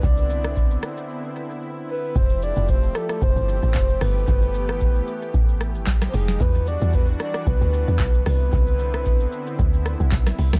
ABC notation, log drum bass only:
X:1
M:4/4
L:1/16
Q:"Swing 16ths" 1/4=113
K:C
V:1 name="Log drum bass" clef=bass
C,,6 z8 z2 | F,,,3 F,,,3 z2 F,,, G,,,2 A,,, F,,,2 G,,,2 | G,,,6 z2 A,,,3 G,,,3 F,,,2 | E,,3 E,,3 z2 B,,, D,,2 E,, B,,,2 C,,2 |
C,,6 z2 D,,3 C,, B,,, z C,, C,, |]